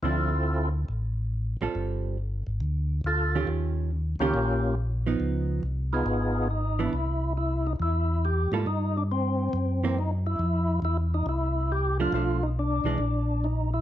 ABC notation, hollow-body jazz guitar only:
X:1
M:4/4
L:1/8
Q:"Swing" 1/4=139
K:Ddor
V:1 name="Hollow-body jazz guitar"
[D,F,CE] z6 [G,CFA]- | [G,CFA]2 z4 z [_E,_DFG]- | [_E,_DFG]2 z [E,DFG] z3 [F,B,_E]- | [F,B,_E]2 z4 z [=E,_CD] |
z6 z [G,_B,FA] | z4 z [E,^A,^B,] z2 | z6 z [F,A,D] | [F,A,D] z2 [E,_A,D] z4 |]